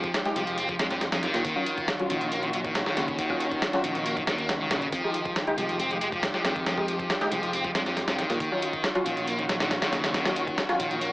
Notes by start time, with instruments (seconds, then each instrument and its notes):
Already playing: string section D#3 G#3 F4 G4, distorted electric guitar F3
0.04 kick, closed hi-hat
0.14 snare, closed hi-hat
0.25 synth stab G#3 D#4 G4, snare, closed hi-hat
0.36 picked electric bass C2, distorted electric guitar F3, closed hi-hat
0.47 picked electric bass F1, closed hi-hat
0.58 distorted electric guitar C4, closed hi-hat
0.69 distorted electric guitar F3, kick, closed hi-hat
0.79 picked electric bass F2, distorted electric guitar G#3, snare, closed hi-hat
0.90 distorted electric guitar F3, snare, closed hi-hat
1.01 snare, closed hi-hat
1.12 picked electric bass F2, distorted electric guitar F3, snare, closed hi-hat
1.23 distorted electric guitar D#3, snare, closed hi-hat
1.34 picked electric bass A#2, snare, closed hi-hat
1.45 picked electric bass D#2, distorted electric guitar D#3, string section C#4 F#4, kick, closed hi-hat
1.56 synth stab F#3 C#4 F4
1.66 closed hi-hat
1.78 kick, closed hi-hat
1.88 snare, closed hi-hat
1.99 synth stab F#3 C#4 F4, closed hi-hat
2.10 picked electric bass A#1, distorted electric guitar D#3, closed hi-hat
2.21 picked electric bass A#1, closed hi-hat
2.32 distorted electric guitar A#3, closed hi-hat
2.43 distorted electric guitar D#3, closed hi-hat
2.53 distorted electric guitar F#3, closed hi-hat
2.64 distorted electric guitar D#3, kick, closed hi-hat
2.75 snare, closed hi-hat
2.86 distorted electric guitar D#3, snare
2.97 picked electric bass D#2, distorted electric guitar C#3, snare, closed hi-hat
3.08 kick, closed hi-hat
3.19 distorted electric guitar D#3, kick, closed hi-hat
3.30 synth stab F#3 C#4 F4, kick
3.40 closed hi-hat
3.52 kick, closed hi-hat
3.62 snare, closed hi-hat
3.73 synth stab F#3 C#4 F4, snare, closed hi-hat
3.84 picked electric bass A#1, distorted electric guitar D#3, closed hi-hat
3.95 picked electric bass A#1, closed hi-hat
4.06 distorted electric guitar A#3, closed hi-hat
4.17 distorted electric guitar D#3, kick, closed hi-hat
4.27 picked electric bass D#2, distorted electric guitar D#3, snare, closed hi-hat
4.38 distorted electric guitar A#3, closed hi-hat
4.49 snare, closed hi-hat
4.60 picked electric bass C#2, distorted electric guitar D#3
4.71 picked electric bass A#1, distorted electric guitar C#3, snare, closed hi-hat
4.82 distorted electric guitar C#3, closed hi-hat
4.92 picked electric bass F2, distorted electric guitar F3, string section G#3 F4 G4, kick, closed hi-hat
5.04 synth stab G#3 D#4 G4
5.14 closed hi-hat
5.25 kick, closed hi-hat
5.36 snare, closed hi-hat
5.47 synth stab G#3 D#4 G4, closed hi-hat
5.58 picked electric bass C2, distorted electric guitar F3, closed hi-hat
5.69 picked electric bass F1, closed hi-hat
5.79 distorted electric guitar C4, closed hi-hat
5.91 distorted electric guitar F3, closed hi-hat
6.01 distorted electric guitar G#3, closed hi-hat
6.12 distorted electric guitar F3, kick, closed hi-hat
6.23 snare, closed hi-hat
6.34 distorted electric guitar F3, snare
6.45 picked electric bass F2, distorted electric guitar D#3, snare, closed hi-hat
6.56 kick, closed hi-hat
6.66 distorted electric guitar F3, snare, closed hi-hat
6.77 synth stab G#3 D#4 G4, kick
6.88 closed hi-hat
6.99 kick, closed hi-hat
7.10 snare, closed hi-hat
7.21 synth stab G#3 D#4 G4, snare, closed hi-hat
7.32 picked electric bass C2, distorted electric guitar F3, closed hi-hat
7.43 picked electric bass F1, closed hi-hat
7.53 distorted electric guitar C4, closed hi-hat
7.64 distorted electric guitar F3, kick, closed hi-hat
7.75 picked electric bass F2, distorted electric guitar G#3, snare, closed hi-hat
7.86 distorted electric guitar F3, snare, closed hi-hat
7.97 snare, closed hi-hat
8.08 picked electric bass F2, distorted electric guitar F3, snare, closed hi-hat
8.18 distorted electric guitar D#3, snare, closed hi-hat
8.30 picked electric bass A#2, snare, closed hi-hat
8.40 picked electric bass D#2, distorted electric guitar D#3, string section D#3 C#4 F#4, kick, closed hi-hat
8.52 synth stab F#3 C#4 F4
8.62 closed hi-hat
8.73 kick, closed hi-hat
8.84 snare, closed hi-hat
8.95 synth stab F#3 C#4 F4, closed hi-hat
9.06 picked electric bass A#1, distorted electric guitar D#3, closed hi-hat
9.17 picked electric bass A#1, closed hi-hat
9.27 distorted electric guitar A#3, closed hi-hat
9.38 distorted electric guitar D#3, closed hi-hat
9.49 distorted electric guitar F#3, snare, closed hi-hat
9.60 distorted electric guitar D#3, snare, closed hi-hat
9.71 snare, closed hi-hat
9.82 distorted electric guitar D#3, snare, closed hi-hat
9.92 picked electric bass D#2, distorted electric guitar C#3, snare, closed hi-hat
10.04 snare, closed hi-hat
10.14 distorted electric guitar D#3, snare, closed hi-hat
10.25 synth stab F#3 C#4 F4, snare, closed hi-hat
10.36 closed hi-hat
10.47 kick, closed hi-hat
10.58 snare, closed hi-hat
10.69 synth stab F#3 C#4 F4, snare, closed hi-hat
10.79 picked electric bass A#1, distorted electric guitar D#3, closed hi-hat
10.91 picked electric bass A#1, closed hi-hat
11.01 distorted electric guitar A#3, closed hi-hat